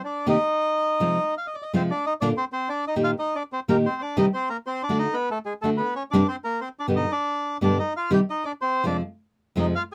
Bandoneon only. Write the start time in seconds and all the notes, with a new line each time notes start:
0.04 D4 D5
0.29 D#4 D#5
1.38 F5
1.47 D#5
1.55 D5
1.62 D#5
1.75 C4 C5
1.90 D4 D5
2.06 D#4 D#5
2.21 D4 D5
2.37 C4 C5
2.52 C4 C5
2.69 D4 D5
2.87 D#4 D#5
3.04 F4 F5
3.19 D#4 D#5
3.35 D4 D5
3.52 C4 C5
3.69 A#3 A#4
3.86 C4 C5
4.02 D4 D5
4.19 D#4 D#5
4.34 C4 C5
4.50 A#3 A#4
4.66 C4 C5
4.83 D4 D5
4.99 D#4 D#5
5.14 B3 B4
5.31 A3 A4
5.46 G#3 G#4
5.62 A3 A4
5.77 B3 B4
5.95 C#4 C#5
6.11 D4 D5
6.28 C4 C5
6.44 A#3 A#4
6.61 C4 C5
6.79 D4 D5
6.96 D#4 D#5
7.12 D4 D5
7.63 D4 D5
7.79 D#4 D#5
7.97 F4 F5
8.12 G4 G5
8.30 D#4 D#5
8.45 D4 D5
8.61 C4 C5
8.86 D4 D5
9.58 D#4 D#5
9.75 F4 F5